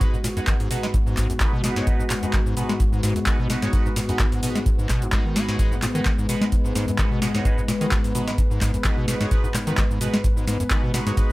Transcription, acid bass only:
0.01 0.05 G#2 medium
0.14 0.17 G#2 medium
0.24 0.28 A#2 medium
0.37 0.40 F#2 medium
0.47 0.54 D#3 medium
0.60 0.69 G#2 medium
0.71 0.78 B2 medium
0.83 0.87 G#3 loud
0.94 0.98 G#2 medium
1.07 1.15 G#2 medium
1.17 1.28 G#2 loud
1.30 1.33 F#2 medium
1.40 1.47 D#3 medium
1.53 1.62 B2 loud
1.64 1.71 B2 medium
1.76 1.82 G#2 medium
1.87 1.91 G#2 medium
2.00 2.03 G#2 medium
2.10 2.14 A#2 medium
2.23 2.26 F#2 medium
2.34 2.40 D#3 medium
2.46 2.55 G#2 medium
2.57 2.64 B2 medium
2.69 2.73 G#3 loud
2.80 2.84 G#2 medium
2.93 3.01 G#2 medium
3.03 3.14 G#2 loud
3.16 3.19 F#2 medium
3.27 3.34 D#3 medium
3.39 3.48 B2 loud
3.50 3.57 B2 medium
3.62 3.68 G#2 medium
3.73 3.77 G#2 medium
3.86 3.89 G#2 medium
3.96 4.00 A#2 medium
4.09 4.12 F#2 medium
4.19 4.26 D#3 medium
4.32 4.41 G#2 medium
4.43 4.50 B2 medium
4.55 4.59 G#3 loud
4.66 4.70 G#2 medium
4.79 4.87 G#2 medium
4.89 5.03 B2 loud
5.02 5.08 G#2 medium
5.13 5.20 G#3 medium
5.25 5.37 D#3 medium
5.36 5.43 B3 medium
5.49 5.57 G#2 medium
5.59 5.63 G#2 medium
5.72 5.75 G#2 medium
5.82 5.87 A#2 medium
5.95 6.01 D#3 loud
6.06 6.13 D#3 medium
6.18 6.27 G#2 medium
6.29 6.36 B2 medium
6.41 6.45 G#3 loud
6.52 6.56 G#2 medium
6.65 6.74 G#2 medium
6.75 6.86 G#2 loud
6.88 6.92 F#2 medium
6.99 7.06 D#3 medium
7.11 7.20 B2 loud
7.22 7.29 B2 medium
7.35 7.40 G#2 medium
7.45 7.49 G#2 medium
7.58 7.61 G#2 medium
7.68 7.73 A#2 medium
7.81 7.87 D#3 loud
7.92 7.99 D#3 medium
8.04 8.13 G#2 medium
8.15 8.22 B2 medium
8.28 8.31 G#3 loud
8.38 8.42 G#2 medium
8.51 8.60 G#2 medium
8.61 8.72 G#2 loud
8.74 8.78 F#2 medium
8.85 8.92 D#3 medium
8.97 9.06 B2 loud
9.08 9.15 B2 medium
9.21 9.26 G#2 medium
9.31 9.35 G#2 medium
9.44 9.47 G#2 medium
9.54 9.59 A#2 medium
9.67 9.73 D#3 loud
9.78 9.85 D#3 medium
9.90 9.99 G#2 medium
10.01 10.08 B2 medium
10.14 10.17 G#3 medium
10.24 10.28 G#2 medium
10.37 10.46 G#2 medium
10.47 10.58 G#2 loud
10.60 10.64 F#2 medium
10.71 10.78 D#3 medium
10.83 10.92 B2 loud
10.94 11.01 B2 medium
11.07 11.12 G#2 medium
11.17 11.21 G#2 medium

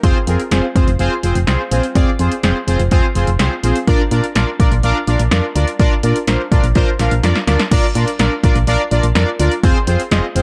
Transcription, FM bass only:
0.03 0.13 F1 loud
0.27 0.37 F2 loud
0.51 0.61 F1 loud
0.76 0.85 F1 loud
0.87 0.97 F1 loud
0.99 1.09 F1 loud
1.23 1.33 F1 medium
1.35 1.45 F1 loud
1.47 1.57 C2 medium
1.71 1.81 A#1 medium
1.95 2.05 F1 loud
2.19 2.29 F2 loud
2.43 2.53 F1 loud
2.67 2.77 F1 loud
2.79 2.89 F1 loud
2.92 3.01 F1 loud
3.15 3.25 F1 loud
3.27 3.37 F1 medium
3.39 3.49 C2 loud
3.63 3.73 A#1 medium
3.88 3.97 A#1 loud
4.11 4.21 A#2 loud
4.36 4.45 A#1 loud
4.60 4.69 A#1 loud
4.72 4.81 A#1 loud
4.83 4.93 A#1 loud
5.07 5.17 A#1 loud
5.19 5.29 A#1 medium
5.32 5.41 F2 medium
5.55 5.65 D2 medium
5.80 5.89 A#1 loud
6.04 6.13 A#2 loud
6.28 6.37 A#1 loud
6.52 6.61 A#1 loud
6.63 6.73 A#1 medium
6.76 6.85 A#1 loud
6.99 7.09 A#1 medium
7.11 7.21 A#1 loud
7.23 7.33 F2 loud
7.47 7.57 D2 medium
7.71 7.81 A#1 loud
7.95 8.05 A#2 loud
8.19 8.29 A#1 loud
8.44 8.53 A#1 medium
8.55 8.65 A#1 loud
8.67 8.77 A#1 loud
8.91 9.01 A#1 loud
9.03 9.13 A#1 medium
9.15 9.25 F2 medium
9.40 9.49 D2 medium
9.63 9.73 F1 loud
9.87 9.97 F2 loud
10.11 10.21 F1 loud
10.36 10.42 F1 medium

